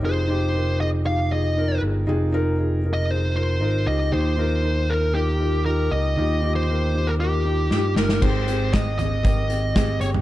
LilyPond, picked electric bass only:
\new Staff \with { instrumentName = "Picked electric bass" } { \clef bass \time 4/4 \key f \minor \tempo 4 = 117 f,,2.~ f,,8 g,,8 | f,,2. aes,,8 des,8 | ees,2.~ ees,8 des,8 | ees,2. g,8 g,,8 |
aes,,2.~ aes,,8 g,,8 | }